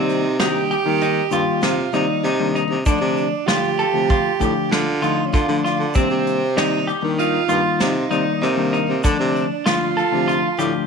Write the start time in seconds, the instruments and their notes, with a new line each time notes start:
Already playing: baritone saxophone C3, tine electric piano D#3 G3 A#3 D5, clean electric guitar C4, alto saxophone D#4
0.09 closed hi-hat
0.39 tine electric piano D#3 G3 A#3 D4, clean electric guitar D#4, alto saxophone G4, snare, closed hi-hat
0.71 clean electric guitar G4, closed hi-hat
0.85 baritone saxophone D#3, tine electric piano D#3 G3 A#3 D#4
1.01 clean electric guitar D#4, closed hi-hat
1.31 baritone saxophone G2, tine electric piano D#3 G3 A#3 F4, clean electric guitar F4, closed hi-hat, shaker
1.62 baritone saxophone C3, alto saxophone F4, snare, closed hi-hat, shaker
1.93 baritone saxophone C3, tine electric piano D#3 G3 A#3 D5, clean electric guitar D#4, alto saxophone D#4, closed hi-hat, shaker
2.24 baritone saxophone C3, clean electric guitar D#4, closed hi-hat
2.40 tine electric piano D#3 G3 A#3 D4
2.55 clean electric guitar D#4, closed hi-hat
2.70 baritone saxophone C3
2.86 baritone saxophone D3, tine electric piano D3 F3 A3 D4, clean electric guitar D4, alto saxophone D4, kick, closed hi-hat, shaker
3.01 baritone saxophone C3
3.17 closed hi-hat
3.47 tine electric piano D3 F3 A3 F4, clean electric guitar F4, alto saxophone G4, snare, closed hi-hat
3.79 clean electric guitar A4, closed hi-hat
3.93 baritone saxophone C3, tine electric piano D3 F3 A3 F4
4.10 clean electric guitar F4, kick, closed hi-hat, shaker
4.40 baritone saxophone A2, tine electric piano D3 F3 A3 D4, clean electric guitar G4, kick, closed hi-hat, shaker
4.71 baritone saxophone D3, alto saxophone F4, snare, closed hi-hat
5.02 tine electric piano D3 F3 A3 D4, alto saxophone D#4, clean electric guitar F4, closed hi-hat, shaker
5.26 alto saxophone C#4
5.33 baritone saxophone D3, alto saxophone D4, clean electric guitar F4, kick, closed hi-hat, shaker
5.48 baritone saxophone D3, tine electric piano D3 F3 A3 D4
5.64 clean electric guitar F4, snare, closed hi-hat
5.79 baritone saxophone D3
5.94 baritone saxophone C3, tine electric piano D#3 G3 A#3 D4, clean electric guitar C4, alto saxophone C4, kick, closed hi-hat, shaker
6.10 baritone saxophone C3
6.26 closed hi-hat
6.56 tine electric piano D#3 G3 A#3 D5, alto saxophone D#4, clean electric guitar D#4, snare, closed hi-hat
6.87 clean electric guitar G4, closed hi-hat
7.02 tine electric piano D#3 G3 A#3 D4, baritone saxophone D#3
7.19 clean electric guitar D#4, alto saxophone F4, closed hi-hat
7.49 baritone saxophone G2, tine electric piano D#3 G3 A#3 D#4, clean electric guitar F4, closed hi-hat, shaker
7.80 baritone saxophone C3, alto saxophone D#4, snare, closed hi-hat, shaker
8.11 baritone saxophone C3, tine electric piano D#3 G3 A#3 D5, clean electric guitar D#4, closed hi-hat, shaker
8.42 baritone saxophone C3, alto saxophone A#3, clean electric guitar D#4, closed hi-hat
8.57 tine electric piano D#3 G3 A#3 D4
8.73 clean electric guitar D#4, closed hi-hat
8.89 baritone saxophone C3
9.04 tine electric piano D3 F3 A3 D4, baritone saxophone D3, clean electric guitar D4, alto saxophone D4, kick, closed hi-hat, shaker
9.20 baritone saxophone C3
9.36 closed hi-hat
9.66 tine electric piano D3 F3 A3 D4, clean electric guitar F4, alto saxophone F4, snare, closed hi-hat
9.97 clean electric guitar A4, closed hi-hat
10.12 baritone saxophone C3, tine electric piano D3 F3 A3 D4
10.28 clean electric guitar F4, closed hi-hat
10.59 baritone saxophone A2, tine electric piano D3 F3 A3 D4, clean electric guitar G4, closed hi-hat, shaker